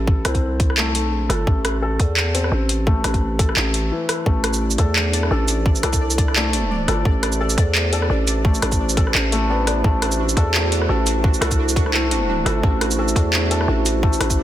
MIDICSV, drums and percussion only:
0, 0, Header, 1, 2, 480
1, 0, Start_track
1, 0, Tempo, 348837
1, 109, Time_signature, 4, 2, 24, 8
1, 19856, End_track
2, 0, Start_track
2, 0, Title_t, "Drums"
2, 103, Note_on_c, 9, 36, 120
2, 241, Note_off_c, 9, 36, 0
2, 343, Note_on_c, 9, 37, 77
2, 343, Note_on_c, 9, 42, 74
2, 476, Note_on_c, 9, 36, 57
2, 480, Note_off_c, 9, 42, 0
2, 480, Note_on_c, 9, 42, 35
2, 481, Note_off_c, 9, 37, 0
2, 613, Note_off_c, 9, 36, 0
2, 617, Note_off_c, 9, 42, 0
2, 822, Note_on_c, 9, 36, 102
2, 824, Note_on_c, 9, 42, 63
2, 960, Note_off_c, 9, 36, 0
2, 962, Note_off_c, 9, 42, 0
2, 963, Note_on_c, 9, 37, 39
2, 1067, Note_on_c, 9, 39, 109
2, 1100, Note_off_c, 9, 37, 0
2, 1204, Note_off_c, 9, 39, 0
2, 1306, Note_on_c, 9, 42, 73
2, 1444, Note_off_c, 9, 42, 0
2, 1787, Note_on_c, 9, 37, 62
2, 1787, Note_on_c, 9, 42, 67
2, 1925, Note_off_c, 9, 37, 0
2, 1925, Note_off_c, 9, 42, 0
2, 2024, Note_on_c, 9, 36, 115
2, 2162, Note_off_c, 9, 36, 0
2, 2266, Note_on_c, 9, 37, 80
2, 2266, Note_on_c, 9, 42, 77
2, 2404, Note_off_c, 9, 37, 0
2, 2404, Note_off_c, 9, 42, 0
2, 2746, Note_on_c, 9, 36, 60
2, 2747, Note_on_c, 9, 42, 59
2, 2883, Note_off_c, 9, 36, 0
2, 2884, Note_off_c, 9, 42, 0
2, 2984, Note_on_c, 9, 39, 109
2, 3121, Note_off_c, 9, 39, 0
2, 3229, Note_on_c, 9, 42, 75
2, 3361, Note_on_c, 9, 37, 37
2, 3367, Note_off_c, 9, 42, 0
2, 3498, Note_off_c, 9, 37, 0
2, 3704, Note_on_c, 9, 42, 65
2, 3842, Note_off_c, 9, 42, 0
2, 3947, Note_on_c, 9, 36, 118
2, 4085, Note_off_c, 9, 36, 0
2, 4186, Note_on_c, 9, 37, 77
2, 4186, Note_on_c, 9, 42, 78
2, 4320, Note_on_c, 9, 36, 57
2, 4323, Note_off_c, 9, 37, 0
2, 4323, Note_off_c, 9, 42, 0
2, 4323, Note_on_c, 9, 42, 38
2, 4457, Note_off_c, 9, 36, 0
2, 4460, Note_off_c, 9, 42, 0
2, 4667, Note_on_c, 9, 36, 103
2, 4668, Note_on_c, 9, 42, 66
2, 4801, Note_on_c, 9, 37, 41
2, 4805, Note_off_c, 9, 36, 0
2, 4806, Note_off_c, 9, 42, 0
2, 4907, Note_on_c, 9, 39, 111
2, 4939, Note_off_c, 9, 37, 0
2, 5045, Note_off_c, 9, 39, 0
2, 5146, Note_on_c, 9, 42, 77
2, 5284, Note_off_c, 9, 42, 0
2, 5627, Note_on_c, 9, 37, 68
2, 5627, Note_on_c, 9, 42, 69
2, 5765, Note_off_c, 9, 37, 0
2, 5765, Note_off_c, 9, 42, 0
2, 5865, Note_on_c, 9, 36, 119
2, 6002, Note_off_c, 9, 36, 0
2, 6106, Note_on_c, 9, 37, 85
2, 6106, Note_on_c, 9, 42, 84
2, 6239, Note_on_c, 9, 82, 66
2, 6244, Note_off_c, 9, 37, 0
2, 6244, Note_off_c, 9, 42, 0
2, 6377, Note_off_c, 9, 82, 0
2, 6477, Note_on_c, 9, 82, 67
2, 6582, Note_on_c, 9, 42, 65
2, 6583, Note_on_c, 9, 36, 62
2, 6614, Note_off_c, 9, 82, 0
2, 6720, Note_off_c, 9, 42, 0
2, 6721, Note_off_c, 9, 36, 0
2, 6823, Note_on_c, 9, 39, 114
2, 6961, Note_off_c, 9, 39, 0
2, 7065, Note_on_c, 9, 42, 80
2, 7199, Note_on_c, 9, 37, 38
2, 7203, Note_off_c, 9, 42, 0
2, 7336, Note_off_c, 9, 37, 0
2, 7543, Note_on_c, 9, 42, 70
2, 7543, Note_on_c, 9, 82, 66
2, 7681, Note_off_c, 9, 42, 0
2, 7681, Note_off_c, 9, 82, 0
2, 7784, Note_on_c, 9, 36, 121
2, 7918, Note_on_c, 9, 82, 34
2, 7921, Note_off_c, 9, 36, 0
2, 8025, Note_on_c, 9, 37, 77
2, 8025, Note_on_c, 9, 42, 81
2, 8055, Note_off_c, 9, 82, 0
2, 8157, Note_on_c, 9, 36, 64
2, 8162, Note_off_c, 9, 42, 0
2, 8162, Note_on_c, 9, 42, 38
2, 8162, Note_on_c, 9, 82, 63
2, 8163, Note_off_c, 9, 37, 0
2, 8295, Note_off_c, 9, 36, 0
2, 8299, Note_off_c, 9, 42, 0
2, 8299, Note_off_c, 9, 82, 0
2, 8401, Note_on_c, 9, 82, 63
2, 8505, Note_on_c, 9, 36, 108
2, 8509, Note_on_c, 9, 42, 67
2, 8539, Note_off_c, 9, 82, 0
2, 8643, Note_off_c, 9, 36, 0
2, 8644, Note_on_c, 9, 37, 37
2, 8646, Note_off_c, 9, 42, 0
2, 8752, Note_on_c, 9, 39, 124
2, 8782, Note_off_c, 9, 37, 0
2, 8889, Note_off_c, 9, 39, 0
2, 8990, Note_on_c, 9, 42, 78
2, 9127, Note_off_c, 9, 42, 0
2, 9469, Note_on_c, 9, 37, 64
2, 9469, Note_on_c, 9, 42, 70
2, 9607, Note_off_c, 9, 37, 0
2, 9607, Note_off_c, 9, 42, 0
2, 9706, Note_on_c, 9, 36, 127
2, 9843, Note_off_c, 9, 36, 0
2, 9947, Note_on_c, 9, 37, 75
2, 9947, Note_on_c, 9, 42, 79
2, 10078, Note_on_c, 9, 82, 62
2, 10085, Note_off_c, 9, 37, 0
2, 10085, Note_off_c, 9, 42, 0
2, 10216, Note_off_c, 9, 82, 0
2, 10318, Note_on_c, 9, 82, 60
2, 10425, Note_on_c, 9, 36, 66
2, 10426, Note_on_c, 9, 42, 65
2, 10455, Note_off_c, 9, 82, 0
2, 10563, Note_off_c, 9, 36, 0
2, 10564, Note_off_c, 9, 42, 0
2, 10665, Note_on_c, 9, 39, 120
2, 10802, Note_off_c, 9, 39, 0
2, 10907, Note_on_c, 9, 42, 77
2, 11040, Note_on_c, 9, 37, 37
2, 11044, Note_off_c, 9, 42, 0
2, 11177, Note_off_c, 9, 37, 0
2, 11386, Note_on_c, 9, 42, 70
2, 11386, Note_on_c, 9, 82, 66
2, 11524, Note_off_c, 9, 42, 0
2, 11524, Note_off_c, 9, 82, 0
2, 11624, Note_on_c, 9, 36, 127
2, 11760, Note_on_c, 9, 82, 36
2, 11761, Note_off_c, 9, 36, 0
2, 11866, Note_on_c, 9, 37, 74
2, 11866, Note_on_c, 9, 42, 76
2, 11897, Note_off_c, 9, 82, 0
2, 11996, Note_on_c, 9, 36, 65
2, 11998, Note_off_c, 9, 42, 0
2, 11998, Note_on_c, 9, 42, 35
2, 11998, Note_on_c, 9, 82, 65
2, 12004, Note_off_c, 9, 37, 0
2, 12134, Note_off_c, 9, 36, 0
2, 12136, Note_off_c, 9, 42, 0
2, 12136, Note_off_c, 9, 82, 0
2, 12238, Note_on_c, 9, 82, 61
2, 12344, Note_on_c, 9, 36, 104
2, 12345, Note_on_c, 9, 42, 62
2, 12375, Note_off_c, 9, 82, 0
2, 12480, Note_on_c, 9, 37, 36
2, 12481, Note_off_c, 9, 36, 0
2, 12483, Note_off_c, 9, 42, 0
2, 12587, Note_on_c, 9, 39, 121
2, 12618, Note_off_c, 9, 37, 0
2, 12724, Note_off_c, 9, 39, 0
2, 12829, Note_on_c, 9, 42, 76
2, 12966, Note_off_c, 9, 42, 0
2, 13308, Note_on_c, 9, 37, 60
2, 13308, Note_on_c, 9, 42, 68
2, 13446, Note_off_c, 9, 37, 0
2, 13446, Note_off_c, 9, 42, 0
2, 13545, Note_on_c, 9, 36, 125
2, 13683, Note_off_c, 9, 36, 0
2, 13789, Note_on_c, 9, 37, 72
2, 13789, Note_on_c, 9, 42, 74
2, 13921, Note_on_c, 9, 82, 68
2, 13927, Note_off_c, 9, 37, 0
2, 13927, Note_off_c, 9, 42, 0
2, 14059, Note_off_c, 9, 82, 0
2, 14161, Note_on_c, 9, 82, 61
2, 14266, Note_on_c, 9, 36, 62
2, 14267, Note_on_c, 9, 42, 60
2, 14299, Note_off_c, 9, 82, 0
2, 14404, Note_off_c, 9, 36, 0
2, 14405, Note_off_c, 9, 42, 0
2, 14508, Note_on_c, 9, 39, 116
2, 14646, Note_off_c, 9, 39, 0
2, 14751, Note_on_c, 9, 42, 74
2, 14882, Note_on_c, 9, 37, 35
2, 14889, Note_off_c, 9, 42, 0
2, 15020, Note_off_c, 9, 37, 0
2, 15228, Note_on_c, 9, 42, 65
2, 15228, Note_on_c, 9, 82, 68
2, 15366, Note_off_c, 9, 42, 0
2, 15366, Note_off_c, 9, 82, 0
2, 15466, Note_on_c, 9, 36, 122
2, 15604, Note_off_c, 9, 36, 0
2, 15604, Note_on_c, 9, 82, 37
2, 15709, Note_on_c, 9, 37, 76
2, 15709, Note_on_c, 9, 42, 74
2, 15741, Note_off_c, 9, 82, 0
2, 15839, Note_on_c, 9, 36, 61
2, 15843, Note_off_c, 9, 42, 0
2, 15843, Note_on_c, 9, 42, 35
2, 15843, Note_on_c, 9, 82, 66
2, 15847, Note_off_c, 9, 37, 0
2, 15976, Note_off_c, 9, 36, 0
2, 15981, Note_off_c, 9, 42, 0
2, 15981, Note_off_c, 9, 82, 0
2, 16084, Note_on_c, 9, 82, 63
2, 16185, Note_on_c, 9, 36, 100
2, 16190, Note_on_c, 9, 42, 62
2, 16221, Note_off_c, 9, 82, 0
2, 16321, Note_on_c, 9, 37, 37
2, 16323, Note_off_c, 9, 36, 0
2, 16328, Note_off_c, 9, 42, 0
2, 16427, Note_on_c, 9, 39, 112
2, 16459, Note_off_c, 9, 37, 0
2, 16565, Note_off_c, 9, 39, 0
2, 16667, Note_on_c, 9, 42, 75
2, 16805, Note_off_c, 9, 42, 0
2, 17147, Note_on_c, 9, 37, 66
2, 17147, Note_on_c, 9, 42, 65
2, 17285, Note_off_c, 9, 37, 0
2, 17285, Note_off_c, 9, 42, 0
2, 17385, Note_on_c, 9, 36, 117
2, 17523, Note_off_c, 9, 36, 0
2, 17630, Note_on_c, 9, 37, 84
2, 17630, Note_on_c, 9, 42, 77
2, 17765, Note_on_c, 9, 82, 71
2, 17768, Note_off_c, 9, 37, 0
2, 17768, Note_off_c, 9, 42, 0
2, 17902, Note_off_c, 9, 82, 0
2, 18003, Note_on_c, 9, 82, 64
2, 18106, Note_on_c, 9, 36, 58
2, 18110, Note_on_c, 9, 42, 60
2, 18140, Note_off_c, 9, 82, 0
2, 18243, Note_off_c, 9, 36, 0
2, 18248, Note_off_c, 9, 42, 0
2, 18348, Note_on_c, 9, 39, 114
2, 18485, Note_off_c, 9, 39, 0
2, 18590, Note_on_c, 9, 42, 77
2, 18724, Note_on_c, 9, 37, 37
2, 18728, Note_off_c, 9, 42, 0
2, 18861, Note_off_c, 9, 37, 0
2, 19070, Note_on_c, 9, 42, 68
2, 19070, Note_on_c, 9, 82, 73
2, 19208, Note_off_c, 9, 42, 0
2, 19208, Note_off_c, 9, 82, 0
2, 19306, Note_on_c, 9, 36, 117
2, 19442, Note_on_c, 9, 82, 39
2, 19443, Note_off_c, 9, 36, 0
2, 19547, Note_on_c, 9, 37, 84
2, 19547, Note_on_c, 9, 42, 81
2, 19580, Note_off_c, 9, 82, 0
2, 19679, Note_on_c, 9, 36, 61
2, 19682, Note_off_c, 9, 42, 0
2, 19682, Note_on_c, 9, 42, 37
2, 19682, Note_on_c, 9, 82, 69
2, 19685, Note_off_c, 9, 37, 0
2, 19816, Note_off_c, 9, 36, 0
2, 19820, Note_off_c, 9, 42, 0
2, 19820, Note_off_c, 9, 82, 0
2, 19856, End_track
0, 0, End_of_file